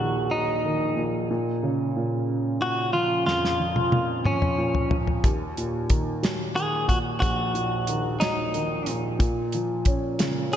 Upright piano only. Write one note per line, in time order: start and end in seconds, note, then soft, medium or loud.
0.00 1.26 A#1 medium
0.00 0.96 A#2 soft
0.00 0.65 D#3 soft
0.00 0.31 F#3 soft
0.31 1.27 F#3 soft
0.65 1.28 D#3 soft
0.96 1.28 A#2 soft
1.31 1.95 A#2 medium
1.63 2.90 C#3 soft
1.96 2.59 A#2 soft
2.61 3.89 A#2 soft
2.93 3.58 F3 soft
3.27 5.20 F2 medium
3.60 4.25 F3 soft
3.93 4.57 A#2 soft
4.26 4.90 F3 soft
4.58 5.22 A#2 soft
4.91 5.23 F3 soft
5.24 7.18 D#2 medium
5.58 6.85 A#2 soft
5.90 6.53 D#3 soft
6.23 7.51 F#3 soft
6.55 7.83 D#3 soft
6.88 7.53 A#2 soft
7.22 9.16 A#1 medium
7.54 8.83 A#2 soft
7.88 8.53 D#3 soft
8.22 9.17 F#3 soft
8.55 9.18 D#3 soft
8.87 9.18 A#2 soft
9.19 10.57 A#2 medium
9.55 10.57 F3 soft
9.87 10.50 C#4 soft
10.19 10.57 C#3 soft
10.51 10.57 C#4 soft